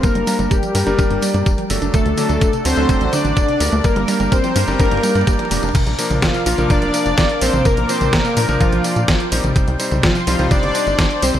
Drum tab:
CC |--------------------------------|--------------------------------|--------------------------------|x-------------------------------|
HH |x-x-o-x-x-x-o-x-x-x-o-x-x-x-o-x-|x-x-o-x-x-x-o-x-x-x-o-x-x-x-o-x-|x-x-o-x-x-x-o-x-x-x-o-x-x-x-o-x-|x-x-o-x-x-x-o-x-x-x-o-x-x-x-o-x-|
TB |x---x-x-x-x-x-x-x---x-x-x---x-x-|x---x-x-x-x-x-x-x---x-x-x---x-x-|x---x-x-x-x-x-x-x---x-x-x---x-x-|x---x-x-x-x-x-x-x---x-x-x---x-x-|
SD |--------------------------------|--------------------------------|--------------------------------|--------o---------------o-------|
T1 |------o-------o---------------o-|------o-------o---------------o-|------o-------o---------------o-|------o-------o---------------o-|
T2 |o-----------o---o-----o-----o---|o---o---o---o---o---o---o---o---|o-o-o-o-o-o-o-o-oooooooooooooooo|--------------------------------|
BD |o-------o-------o-------o-------|o-------o-------o-------o-------|o-------o-------o-------o-------|o-------o-------o-------o-------|

CC |--------------------------------|--------------------------------|
HH |x-x-o-x-x-x-o-x-x-x-o-x-x-x-o-x-|x-x-o-x-x-x-o-x-x-x-o-x-x-x-o-x-|
TB |x---x-x-x-x-x-x-x---x-x-x---x-x-|x---x-x-x-x-x-x-x---x-x-x---x-x-|
SD |--------o---------------o-------|--------o---------------o-------|
T1 |------o-------o---------------o-|------o-------o---------------o-|
T2 |--------------------------------|--------------------------------|
BD |o-------o-------o-------o-------|o-------o-------o-------o-------|